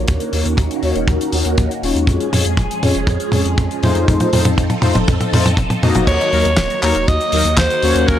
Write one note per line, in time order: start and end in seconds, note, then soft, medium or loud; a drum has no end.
0.00 0.30 A#3 medium
0.00 2.04 A#3 medium
0.00 0.30 D#4 medium
0.00 0.30 F#4 medium
0.00 0.30 C#5 loud
0.08 0.18 D#2 loud
0.08 2.06 D#3 medium
0.08 2.06 C#4 medium
0.08 2.06 F#4 medium
0.08 kick loud
0.08 closed hi-hat medium
0.08 mid tom medium
0.20 closed hi-hat medium
0.33 0.43 D#2 loud
0.33 0.46 A#3 medium
0.33 0.46 D#4 medium
0.33 0.46 F#4 medium
0.33 0.46 C#5 medium
0.33 open hi-hat loud
0.45 0.56 D#2 medium
0.45 closed hi-hat medium
0.57 0.68 D#2 loud
0.57 kick loud
0.57 closed hi-hat medium
0.57 mid tom medium
0.71 closed hi-hat medium
0.83 0.93 D#2 medium
0.83 0.96 A#3 medium
0.83 0.96 D#4 medium
0.83 0.96 F#4 medium
0.83 0.96 C#5 loud
0.83 open hi-hat medium
0.95 1.06 D#1 medium
0.95 closed hi-hat medium
1.08 1.18 D#2 loud
1.08 kick loud
1.08 closed hi-hat medium
1.08 mid tom medium
1.21 closed hi-hat medium
1.32 1.43 D#2 medium
1.32 1.46 A#3 medium
1.32 1.46 D#4 medium
1.32 1.46 F#4 medium
1.32 1.46 C#5 medium
1.32 open hi-hat loud
1.45 1.56 D#2 medium
1.45 closed hi-hat medium
1.58 1.68 D#2 loud
1.58 kick loud
1.58 closed hi-hat medium
1.58 mid tom medium
1.71 closed hi-hat soft
1.83 1.93 D#1 medium
1.83 2.30 G#3 medium
1.83 2.30 C#4 medium
1.83 2.30 F4 medium
1.83 2.30 C#5 loud
1.83 open hi-hat medium
1.95 2.06 D#2 medium
1.95 closed hi-hat medium
2.07 2.18 F2 loud
2.07 6.04 F3 medium
2.07 4.06 G#3 medium
2.07 4.06 C#4 medium
2.07 4.06 G#4 medium
2.07 kick loud
2.07 closed hi-hat medium
2.07 mid tom medium
2.20 closed hi-hat soft
2.33 2.43 F2 loud
2.33 2.46 G#3 medium
2.33 2.46 C#4 medium
2.33 2.46 F4 medium
2.33 2.46 C#5 medium
2.33 open hi-hat loud
2.33 mid tom medium
2.45 2.56 F2 medium
2.45 closed hi-hat medium
2.57 2.68 F1 loud
2.57 kick loud
2.57 closed hi-hat medium
2.57 mid tom medium
2.71 closed hi-hat medium
2.83 2.93 F2 loud
2.83 2.96 G#3 medium
2.83 2.96 C#4 medium
2.83 2.96 F4 medium
2.83 2.96 C#5 loud
2.83 open hi-hat medium
2.83 mid tom medium
2.95 3.06 F1 medium
2.95 closed hi-hat medium
3.07 3.18 F2 loud
3.07 kick loud
3.07 closed hi-hat medium
3.07 mid tom medium
3.20 closed hi-hat medium
3.32 3.43 F2 medium
3.32 3.46 G#3 medium
3.32 3.46 C#4 medium
3.32 3.46 F4 medium
3.32 3.46 C#5 medium
3.32 open hi-hat loud
3.32 mid tom medium
3.46 3.56 F2 medium
3.46 closed hi-hat medium
3.58 3.68 F2 loud
3.58 kick loud
3.58 closed hi-hat medium
3.58 mid tom medium
3.71 closed hi-hat soft
3.83 3.93 F2 medium
3.83 4.30 A3 medium
3.83 4.30 D#4 medium
3.83 4.30 F4 medium
3.83 4.30 C5 loud
3.83 open hi-hat medium
3.83 mid tom loud
3.95 4.06 F2 medium
3.95 closed hi-hat medium
4.08 4.18 F2 loud
4.08 6.06 C4 medium
4.08 6.06 D#4 medium
4.08 6.06 A4 medium
4.08 kick loud
4.08 closed hi-hat medium
4.08 mid tom medium
4.20 closed hi-hat medium
4.20 mid tom medium
4.33 4.43 F2 loud
4.33 4.46 A3 medium
4.33 4.46 D#4 medium
4.33 4.46 F4 medium
4.33 4.46 C5 medium
4.33 open hi-hat loud
4.33 mid tom medium
4.45 4.56 F2 medium
4.45 closed hi-hat medium
4.45 mid tom medium
4.58 4.68 F2 loud
4.58 kick loud
4.58 closed hi-hat medium
4.58 mid tom medium
4.70 closed hi-hat medium
4.70 mid tom medium
4.82 4.93 F2 loud
4.82 4.96 A3 medium
4.82 4.96 D#4 medium
4.82 4.96 F4 medium
4.82 4.96 C5 loud
4.82 open hi-hat medium
4.82 mid tom loud
4.95 5.06 F1 medium
4.95 closed hi-hat medium
4.95 mid tom medium
5.08 5.18 F2 loud
5.08 kick loud
5.08 closed hi-hat medium
5.08 mid tom loud
5.21 closed hi-hat medium
5.21 mid tom medium
5.33 5.43 F2 loud
5.33 5.46 A3 medium
5.33 5.46 D#4 medium
5.33 5.46 F4 medium
5.33 5.46 C5 medium
5.33 open hi-hat loud
5.33 mid tom loud
5.45 5.56 F2 medium
5.45 closed hi-hat soft
5.45 mid tom medium
5.57 5.68 F1 loud
5.57 kick loud
5.57 closed hi-hat medium
5.57 mid tom loud
5.70 closed hi-hat medium
5.70 mid tom medium
5.83 5.93 F2 loud
5.83 6.30 A#3 medium
5.83 6.30 D#4 medium
5.83 6.30 F#4 medium
5.83 6.30 D#5 loud
5.83 open hi-hat medium
5.83 mid tom loud
5.95 6.06 F1 medium
5.95 closed hi-hat medium
5.95 mid tom medium
6.07 6.18 D#2 loud
6.07 8.06 D#3 medium
6.07 8.06 F#3 medium
6.07 8.19 A#3 medium
6.07 8.19 F#4 medium
6.07 6.79 C#5 loud
6.07 kick loud
6.07 closed hi-hat medium
6.07 crash loud
6.21 closed hi-hat soft
6.33 6.43 D#2 loud
6.33 6.46 F#3 medium
6.33 6.46 A#3 medium
6.33 6.46 D#4 medium
6.33 6.46 A#4 medium
6.33 open hi-hat loud
6.45 6.56 D#2 medium
6.45 closed hi-hat medium
6.57 6.68 D#1 loud
6.57 kick loud
6.57 snare loud
6.57 clap medium
6.57 closed hi-hat medium
6.70 closed hi-hat medium
6.83 6.93 D#2 loud
6.83 6.96 F#3 medium
6.83 6.96 A#3 medium
6.83 6.96 D#4 medium
6.83 6.96 A#4 loud
6.83 7.09 C#5 loud
6.83 clap medium
6.83 open hi-hat medium
6.95 7.06 D#1 medium
6.95 closed hi-hat medium
7.08 7.18 D#2 loud
7.08 7.57 D#5 loud
7.08 kick loud
7.08 closed hi-hat medium
7.21 closed hi-hat soft
7.32 7.43 D#2 medium
7.32 7.46 F#3 medium
7.32 7.46 A#3 medium
7.32 7.46 D#4 medium
7.32 7.46 A#4 medium
7.32 open hi-hat loud
7.45 7.56 D#2 medium
7.45 closed hi-hat medium
7.57 7.68 D#2 loud
7.57 8.09 C5 loud
7.57 kick loud
7.57 snare loud
7.57 clap medium
7.57 closed hi-hat medium
7.70 closed hi-hat soft
7.82 7.93 D#2 loud
7.82 8.19 A#3 medium
7.82 8.19 C#4 medium
7.82 8.19 F#4 medium
7.82 8.19 C#5 loud
7.82 open hi-hat loud
7.95 8.06 D#2 medium
7.95 closed hi-hat medium
8.08 8.18 D#2 loud
8.08 8.19 C#3 medium
8.08 8.19 F#3 medium
8.08 8.19 A#4 loud
8.08 kick loud
8.08 closed hi-hat medium